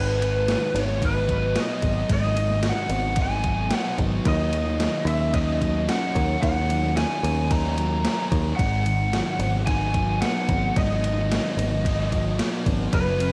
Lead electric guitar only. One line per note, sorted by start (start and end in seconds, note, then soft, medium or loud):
0.00 0.78 B4 medium
0.79 1.04 C#5 medium
1.05 1.58 B4 medium
1.60 2.12 D#5 medium
2.13 2.66 D#5 medium
2.69 3.22 F#5 loud
3.22 3.76 G#5 medium
3.76 3.96 F#5 medium
4.28 5.07 D#5 medium
5.07 5.34 E5 medium
5.34 5.90 D#5 medium
5.90 6.41 F#5 medium
6.42 6.97 F#5 medium
6.97 7.52 G#5 loud
7.51 8.28 A#5 medium
8.56 9.66 F#5 medium
9.66 10.21 G#5 loud
10.22 10.78 F#5 medium
10.77 12.35 D#5 medium
12.95 13.32 B4 loud